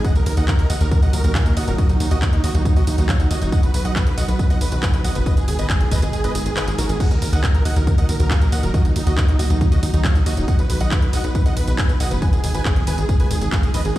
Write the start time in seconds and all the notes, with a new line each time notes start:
Already playing: D#3 D#4
0.04 A#2 F#3 F#4 D#5 F#5, kick, closed hi-hat, tambourine
0.15 D#2 A#4, closed hi-hat, tambourine
0.26 D#2 A#4, open hi-hat, tambourine
0.37 D#2 D#5 F#5, closed hi-hat, tambourine
0.48 A#4, kick, clap, closed hi-hat, tambourine
0.59 D#2 A#4, closed hi-hat
0.70 D#2 D#5 F#5, open hi-hat, tambourine
0.81 D#2 A#4, closed hi-hat, tambourine
0.91 A#4, kick, closed hi-hat, tambourine
1.02 D#2 D#5 F#5, closed hi-hat, tambourine
1.13 D#2 A#4, open hi-hat, tambourine
1.24 D#2 A#4, closed hi-hat, tambourine
1.35 F5 G#5, kick, clap, closed hi-hat, tambourine
1.46 D#2 A#4, closed hi-hat, tambourine
1.57 D#2 D#5 F#5, open hi-hat, tambourine
1.68 D#1 A#4, closed hi-hat, tambourine
1.78 F#4 D#5, kick, closed hi-hat, tambourine
1.89 D#2 D#4, closed hi-hat, tambourine
2.00 D#2 D#4, open hi-hat, tambourine
2.11 D#2 F#4 D#5, closed hi-hat, tambourine
2.22 D#4, kick, clap, closed hi-hat, tambourine
2.33 D#2 D#4, closed hi-hat
2.44 D#2 F#4 D#5, open hi-hat, tambourine
2.55 D#2 D#4, closed hi-hat, tambourine
2.65 D#4, kick, closed hi-hat, tambourine
2.76 D#2 F#4 D#5, closed hi-hat, tambourine
2.87 D#2 D#4, open hi-hat, tambourine
2.98 D#2 D#4, closed hi-hat, tambourine
3.09 C#5 F5, kick, clap, closed hi-hat, tambourine
3.20 D#2 D#4, closed hi-hat, tambourine
3.30 D#2 F#4 D#5, open hi-hat, tambourine
3.41 D#1 D#4, closed hi-hat, tambourine
3.52 B2 D#3 D#4 D#5 F#5, kick, closed hi-hat, tambourine
3.63 B1 B4, closed hi-hat, tambourine
3.74 B1 B4, open hi-hat, tambourine
3.85 B1 D#5 F#5, closed hi-hat, tambourine
3.96 B4, kick, clap, closed hi-hat, tambourine
4.07 B1 B4, closed hi-hat
4.17 B1 D#5 F#5, open hi-hat, tambourine
4.28 B1 B4, closed hi-hat, tambourine
4.39 B4, kick, closed hi-hat, tambourine
4.50 B1 D#5 F#5, closed hi-hat, tambourine
4.61 B1 B4, open hi-hat, tambourine
4.72 B1 B4, closed hi-hat, tambourine
4.83 B4 G#5, kick, clap, closed hi-hat, tambourine
4.94 B1 B4, closed hi-hat, tambourine
5.04 B1 D#5 F#5, open hi-hat, tambourine
5.15 F#1 B4, closed hi-hat, tambourine
5.26 G#3 G#4 B4 D#5, kick, closed hi-hat, tambourine
5.37 G#1 G#4, closed hi-hat, tambourine
5.48 G#1 G#4, open hi-hat, tambourine
5.59 G#1 B4 D#5, closed hi-hat, tambourine
5.70 G#4, kick, clap, closed hi-hat, tambourine
5.81 G#1 G#4, closed hi-hat
5.91 G#1 B4 D#5, kick, open hi-hat, tambourine
6.02 G#1 G#4, closed hi-hat, tambourine
6.13 G#4, closed hi-hat, tambourine
6.24 G#1 B4 D#5, closed hi-hat, tambourine
6.35 G#1 G#4, open hi-hat, tambourine
6.46 G#1 G#4, closed hi-hat, tambourine
6.57 G#4 B4, clap, closed hi-hat, tambourine
6.67 G#1 G#4, closed hi-hat, tambourine
6.78 A#1 F#4 A#4, open hi-hat, tambourine
6.89 G#1 G#4, closed hi-hat, tambourine
7.00 A#2 F#3 F#4 D#5 F#5, kick, closed hi-hat, tambourine, crash
7.11 D#2 A#4, closed hi-hat, tambourine
7.22 D#2 A#4, open hi-hat, tambourine
7.33 D#2 D#5 F#5, closed hi-hat, tambourine
7.44 A#4, kick, clap, closed hi-hat, tambourine
7.54 D#2 A#4, closed hi-hat
7.65 D#2 D#5 F#5, open hi-hat, tambourine
7.76 D#2 A#4, closed hi-hat, tambourine
7.87 A#4, kick, closed hi-hat, tambourine
7.98 D#2 D#5 F#5, closed hi-hat, tambourine
8.09 D#2 A#4, open hi-hat, tambourine
8.20 D#2 A#4, closed hi-hat, tambourine
8.31 F5 G#5, kick, clap, closed hi-hat, tambourine
8.41 D#2 A#4, closed hi-hat, tambourine
8.52 D#2 D#5 F#5, open hi-hat, tambourine
8.63 D#1 A#4, closed hi-hat, tambourine
8.74 F#4 D#5, kick, closed hi-hat, tambourine
8.85 D#2 D#4, closed hi-hat, tambourine
8.96 D#2 D#4, open hi-hat, tambourine
9.07 D#2 F#4 D#5, closed hi-hat, tambourine
9.17 D#4, kick, clap, closed hi-hat, tambourine
9.28 D#2 D#4, closed hi-hat
9.39 D#2 F#4 D#5, open hi-hat, tambourine
9.50 D#2 D#4, closed hi-hat, tambourine
9.61 D#4, kick, closed hi-hat, tambourine
9.72 D#2 F#4 D#5, closed hi-hat, tambourine
9.83 D#2 D#4, open hi-hat, tambourine
9.93 D#2 D#4, closed hi-hat, tambourine
10.04 C#5 F5, kick, clap, closed hi-hat, tambourine
10.15 D#2 D#4, closed hi-hat, tambourine
10.26 D#2 F#4 D#5, open hi-hat, tambourine
10.37 D#1 D#4, closed hi-hat, tambourine
10.48 B2 D#5 F#5, kick, closed hi-hat, tambourine
10.59 B1 B4, closed hi-hat, tambourine
10.70 B1 B4, open hi-hat, tambourine
10.81 B1 D#5 F#5, closed hi-hat, tambourine
10.91 B4, kick, clap, closed hi-hat, tambourine
11.02 B1 B4, closed hi-hat
11.13 B1 D#5 F#5, open hi-hat, tambourine
11.24 B1 B4, closed hi-hat, tambourine
11.35 B4, kick, closed hi-hat, tambourine
11.46 B1 D#5 F#5, closed hi-hat, tambourine
11.57 B1 B4, open hi-hat, tambourine
11.68 B1 B4, closed hi-hat, tambourine
11.78 B4 G#5, kick, clap, closed hi-hat, tambourine
11.89 B1 B4, closed hi-hat, tambourine
12.00 B1 D#5 F#5, open hi-hat, tambourine
12.11 F#1 B4, closed hi-hat, tambourine
12.22 D#3 G#3 G#4 B4 G#5, kick, closed hi-hat, tambourine
12.33 G#1 G#4, closed hi-hat, tambourine
12.44 G#1 G#4, open hi-hat, tambourine
12.54 G#1 B4 G#5, closed hi-hat, tambourine
12.65 G#4, kick, clap, closed hi-hat, tambourine
12.76 G#1 G#4, closed hi-hat
12.87 G#1 B4 G#5, open hi-hat, tambourine
12.98 G#1 G#4, closed hi-hat, tambourine
13.09 G#4, kick, closed hi-hat, tambourine
13.20 G#1 B4 G#5, closed hi-hat, tambourine
13.31 G#1 G#4, open hi-hat, tambourine
13.41 G#1 G#4, closed hi-hat, tambourine
13.52 G#4 F5, kick, clap, closed hi-hat, tambourine
13.63 G#1 G#4, closed hi-hat, tambourine
13.74 A#1 B4 D#5, open hi-hat, tambourine
13.85 G#1 G#4, closed hi-hat, tambourine